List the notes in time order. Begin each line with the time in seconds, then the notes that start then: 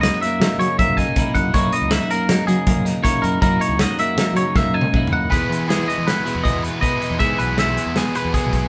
Already playing: F#2 A#3 D#4
0.01 F#3 E4 D#5, snare, closed hi-hat
0.14 F#4
0.21 A#3 E5, closed hi-hat
0.40 F#3 D#4, snare, closed hi-hat
0.58 C#3 F#3 C#5, closed hi-hat
0.79 F#2 A#3 E5, kick, closed hi-hat
0.88 F#2
0.97 D#4 G#5, kick, snare, closed hi-hat
1.16 F#2 A#3 D#4 E4, kick, snare, closed hi-hat
1.35 F#2 D#4 F#5, kick, closed hi-hat
1.54 F#2 A#3 D#4 E4 C#5, kick, closed hi-hat
1.72 D#4 D#5, closed hi-hat
1.82 C#2
1.90 F#3 E4 E5, snare, closed hi-hat
2.01 F#4
2.10 A#3 A#4, closed hi-hat
2.29 F#3 D#4, snare, closed hi-hat
2.47 C#3 F#3 G#4, closed hi-hat
2.67 F#2 A#3, kick, closed hi-hat
2.76 F#2
2.85 D#4, snare, closed hi-hat
3.02 F#2 A#3 D#4 E4 C#5, kick, snare, closed hi-hat
3.22 F#2 D#4 A#4, closed hi-hat
3.41 F#2 A#3 D#4 E4 A#4, kick, closed hi-hat
3.59 D#4 C#5, closed hi-hat
3.69 C#2
3.79 F#3 F#4 D#5, snare, closed hi-hat
3.99 A#3 E5, closed hi-hat
4.17 F#3 D#4, snare, closed hi-hat
4.33 C#3 F#3 C#5, closed hi-hat
4.55 F#2 A#3 E5, kick, snare
4.64 F#2
4.74 D#4 G#5
4.81 high tom
4.94 F#2 A#3 D#4 E4, kick, mid tom
5.07 D#2, mid tom
5.13 D#4 F#5
5.30 E2 E3 G#3 B3 E4 G#4 B4, kick, closed hi-hat
5.49 E3 G#3 B3 E4, closed hi-hat
5.67 E3 G#3 B3 E4 G#4, snare, closed hi-hat
5.86 G#3 B3 E4 D#5, closed hi-hat
5.98 E3
6.07 B3 B4, snare, closed hi-hat
6.25 B2 G#3 B3 E4 G#4, closed hi-hat
6.35 E2
6.43 D#2 E3 G#3 B3 E4 D#5, kick, closed hi-hat
6.53 E2
6.63 B4, closed hi-hat
6.81 E2 E3 G#3 B3 E4 B4 D#5, kick, closed hi-hat
7.00 G#3 B3 D#4 E4, closed hi-hat
7.10 E2
7.19 E2 G#2 E3 G#3 B3 E4 G#4 E5, kick, closed hi-hat
7.38 B1 G#3 B3 E4 B4, closed hi-hat
7.56 E3 G#3 B3 E4 G#4 E5, snare, closed hi-hat
7.76 G#3 B3 E4, closed hi-hat
7.86 E2
7.96 B3 G#4, snare, closed hi-hat
8.13 B2 G#3 B3 E4 G#4 B4, closed hi-hat
8.25 E2
8.32 E3 G#3 B3 E4 G#4, kick, closed hi-hat
8.45 B1
8.53 kick, closed hi-hat